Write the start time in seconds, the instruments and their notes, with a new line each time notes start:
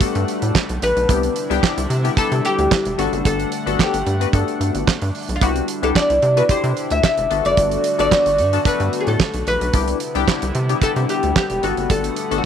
Already playing: analog synth pad D3 G3 A3 D4 F#5, oud G4
0.01 analog synth bass G2, analog polysynth B3 D4 F#4 A4, kick, closed hi-hat
0.15 analog synth bass G2, closed hi-hat
0.28 closed hi-hat
0.42 analog synth bass A2, closed hi-hat
0.55 kick, snare, clap
0.69 analog synth bass B1, closed hi-hat
0.82 analog synth bass A#1, oud B4, closed hi-hat
0.96 analog synth bass B1, closed hi-hat
1.09 analog synth bass C2, analog synth pad C3 E4, analog polysynth B3 D4 E4 G4, kick, closed hi-hat
1.23 closed hi-hat
1.36 closed hi-hat
1.50 analog synth bass C2, analog polysynth B3 D4 E4 G4, closed hi-hat
1.63 kick, snare, clap
1.77 analog synth bass C2, closed hi-hat
1.90 analog synth bass C3, closed hi-hat
2.04 analog polysynth B3 D4 E4 G4, closed hi-hat
2.17 analog synth bass C3, analog polysynth B3 D4 E4 G4, oud A4, kick, closed hi-hat
2.32 analog synth bass C3, closed hi-hat
2.45 oud G4, closed hi-hat
2.58 analog synth bass D2, closed hi-hat
2.71 kick, snare, clap
2.85 analog synth bass E1, closed hi-hat
2.98 analog synth bass G1, analog synth pad A3 F#5, analog polysynth B3 D4 F#4 A4, oud F#4, closed hi-hat
3.13 analog synth bass F#1, closed hi-hat
3.25 analog synth bass G1, oud A4, kick, closed hi-hat
3.40 closed hi-hat
3.52 closed hi-hat
3.66 analog synth bass G1, analog polysynth B3 D4 F#4 A4, closed hi-hat
3.79 oud G4, kick, snare, clap
3.94 analog synth bass G1, closed hi-hat
4.06 analog synth bass G2, closed hi-hat
4.20 analog polysynth B3 D4 F#4 B4, closed hi-hat
4.33 analog synth bass G2, analog polysynth B3 D4 F#4 A4, kick, closed hi-hat
4.48 closed hi-hat
4.60 analog synth bass G2, closed hi-hat
4.75 analog synth bass G1, closed hi-hat
4.87 kick, snare, clap
5.02 analog synth bass G2, closed hi-hat
5.15 open hi-hat
5.29 analog synth bass B1, closed hi-hat
5.36 oud F4
5.41 analog synth bass C2, analog synth pad D3 E4, analog polysynth B3 D4 E4 G4, oud F#4, kick, closed hi-hat
5.56 closed hi-hat
5.68 closed hi-hat
5.83 analog synth bass C2, analog polysynth B3 D4 E4 G4, oud A4, closed hi-hat
5.95 oud D5, kick, snare, clap
6.10 analog synth bass C2, closed hi-hat
6.22 analog synth bass C3, closed hi-hat
6.36 analog polysynth B3 D4 E4 F#4, oud B4, closed hi-hat
6.49 analog polysynth B2 D4 E4 G4, analog synth bass C3, oud C5, kick, closed hi-hat
6.64 analog synth bass C3, closed hi-hat
6.77 closed hi-hat
6.90 analog synth bass D2, oud E5, closed hi-hat
7.03 oud E5, kick, snare, clap
7.18 analog synth bass E1, closed hi-hat
7.30 analog synth bass G1, analog synth pad A3 F#4, analog polysynth B3 D4 F#4 A4, closed hi-hat
7.45 analog synth bass F#1, oud D5, closed hi-hat
7.57 analog synth bass G1, kick, closed hi-hat
7.71 closed hi-hat
7.84 closed hi-hat
7.98 analog synth bass G1, analog polysynth B3 D4 F#4 A4, oud D5, closed hi-hat
8.11 kick, snare, clap
8.26 analog synth bass G1, closed hi-hat
8.38 analog synth bass G2, closed hi-hat
8.53 analog polysynth B3 D4 F#4 A4, closed hi-hat
8.65 analog synth bass G2, analog polysynth B3 D4 F#4 A4, oud B4, kick, closed hi-hat
8.80 analog synth bass G2, closed hi-hat
8.93 closed hi-hat
9.00 oud G#4
9.07 analog synth bass A2, oud A4, closed hi-hat
9.20 kick, snare, clap
9.34 analog synth bass B1, closed hi-hat
9.47 analog synth bass A#1, oud B4, closed hi-hat
9.61 analog synth bass B1, closed hi-hat
9.73 analog synth bass C2, analog synth pad C3 D3 G3 B3 E4, analog polysynth B3 D4 E4 G4, kick, closed hi-hat
9.88 closed hi-hat
10.00 closed hi-hat
10.15 analog synth bass C2, analog polysynth B3 D4 E4 G4, closed hi-hat
10.28 kick, snare, clap
10.42 analog synth bass C2, closed hi-hat
10.55 analog synth bass C3, closed hi-hat
10.69 analog polysynth B3 D4 E4 G4, closed hi-hat
10.82 analog synth bass C3, analog polysynth B3 D4 E4 G4, oud A4, kick, closed hi-hat
10.96 analog synth bass C3, closed hi-hat
11.09 oud G4, closed hi-hat
11.23 analog synth bass D2, closed hi-hat
11.36 oud G4, kick, snare, clap
11.50 analog synth bass E1, closed hi-hat
11.63 analog synth bass G1, analog synth pad A3 F#5, analog polysynth B3 D4 F#4 A4, oud F#4, closed hi-hat
11.77 analog synth bass F#1, closed hi-hat
11.90 analog synth bass G1, oud A4, kick, closed hi-hat
12.04 closed hi-hat
12.16 closed hi-hat
12.31 analog synth bass G1, analog polysynth B3 D4 F#4 A4, closed hi-hat
12.38 oud F#4